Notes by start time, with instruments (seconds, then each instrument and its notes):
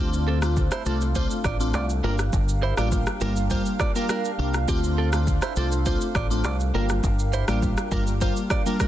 Already playing: fingered electric bass D2, synth keys A3 C4 D4, analog synth pad D4 A4 C5 F5
0.00 synth keys F4
0.13 shaker
0.28 clean electric guitar C4 A4
0.42 synth keys A3 C4 D4 F4, cross-stick, shaker
0.57 kick, shaker
0.71 clean electric guitar E4 C5, cross-stick, shaker
0.86 fingered electric bass C2, synth keys A3 C4 D4 F4, clean electric guitar C4 A4, shaker
1.01 shaker
1.15 synth keys A3 C4 D4 F4, clean electric guitar F4 C5, kick, shaker
1.31 shaker
1.44 fingered electric bass A1, clean electric guitar F4 D5, kick, cross-stick, shaker
1.60 synth keys A3 C4 D4 F4, shaker
1.74 fingered electric bass C2, clean electric guitar F4 D5, cross-stick, shaker
1.90 shaker
2.03 fingered electric bass G1, synth keys G3 A#3 D4 F4, clean electric guitar D4 A#4, analog synth pad G4 A#4
2.19 cross-stick, shaker
2.33 fingered electric bass G1, kick, shaker
2.49 shaker
2.63 clean electric guitar E4 C5
2.77 fingered electric bass A1, synth keys G3 A#3 D4 F4, clean electric guitar F4 D5, cross-stick, shaker
2.92 kick, shaker
3.07 cross-stick, shaker
3.21 fingered electric bass G1, synth keys G3 A#3 D4 F4, clean electric guitar D4 A#4, shaker
3.36 shaker
3.50 synth keys G3 A#3 D4 F4, clean electric guitar F4 C5, kick, shaker
3.66 shaker
3.80 clean electric guitar F4 D5, kick, cross-stick, shaker
3.95 synth keys G3 A#3 D4 F4, clean electric guitar D4 A#4, shaker
4.09 clean electric guitar D4 A#4, cross-stick, shaker
4.25 shaker
4.39 fingered electric bass C2, synth keys G3 A#3 D4 F4
4.54 cross-stick, shaker
4.68 fingered electric bass D2, synth keys A3 C4 D4 F4, clean electric guitar C4 G4, analog synth pad A4 C5, kick, shaker
4.84 shaker
4.98 clean electric guitar C4 A4
5.13 synth keys A3 C4 D4 F4, cross-stick, shaker
5.27 kick, shaker
5.42 clean electric guitar E4 C5, cross-stick, shaker
5.56 fingered electric bass C2, synth keys A3 C4 D4 F4, clean electric guitar C4 A4, shaker
5.72 shaker
5.86 synth keys A3 C4 D4 F4, clean electric guitar F4 C5, kick, shaker
6.01 shaker
6.15 fingered electric bass A1, clean electric guitar F4 D5, kick, cross-stick, shaker
6.30 synth keys A3 C4 D4 F4, shaker
6.45 fingered electric bass C2, clean electric guitar F4 D5, cross-stick, shaker
6.60 shaker
6.74 fingered electric bass G1, synth keys G3 A#3 D4 F4, analog synth pad D4 G4 A#4 F5, clean electric guitar D4 A#4
6.89 cross-stick, shaker
7.04 fingered electric bass G1, kick, shaker
7.19 shaker
7.33 clean electric guitar E4 C5, shaker
7.48 fingered electric bass A1, synth keys G3 A#3 D4 F4, clean electric guitar F4 D5, cross-stick, shaker
7.63 kick, shaker
7.77 cross-stick, shaker
7.91 fingered electric bass G1, synth keys G3 A#3 D4 F4, clean electric guitar D4 A#4, kick, shaker
8.07 shaker
8.21 synth keys G3 A#3 D4 F4, clean electric guitar F4 C5, kick, shaker
8.36 shaker
8.50 clean electric guitar F4 D5, kick, cross-stick, shaker
8.66 synth keys G3 A#3 D4 F4, clean electric guitar D4 A#4, shaker
8.80 clean electric guitar D4 A#4, kick, cross-stick, shaker